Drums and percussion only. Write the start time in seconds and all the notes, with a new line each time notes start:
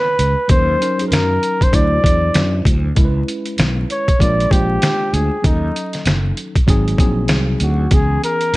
0.19 closed hi-hat
0.49 kick, closed hi-hat
0.82 closed hi-hat
0.99 closed hi-hat
1.12 snare, closed hi-hat
1.43 closed hi-hat
1.61 kick, closed hi-hat
1.73 kick, closed hi-hat
2.04 kick, closed hi-hat
2.34 snare, closed hi-hat
2.65 kick, closed hi-hat
2.96 kick, closed hi-hat
3.28 closed hi-hat
3.45 closed hi-hat
3.58 snare, closed hi-hat
3.90 closed hi-hat
4.08 kick, closed hi-hat
4.20 kick, closed hi-hat
4.40 closed hi-hat
4.51 kick, closed hi-hat
4.82 snare, closed hi-hat
5.14 closed hi-hat
5.44 kick, closed hi-hat
5.76 closed hi-hat
5.93 snare, closed hi-hat
6.06 snare, closed hi-hat
6.37 closed hi-hat
6.55 kick, closed hi-hat
6.68 kick, closed hi-hat
6.88 closed hi-hat
6.98 kick, closed hi-hat
7.28 snare, closed hi-hat
7.60 closed hi-hat
7.91 kick, closed hi-hat
8.24 closed hi-hat
8.41 closed hi-hat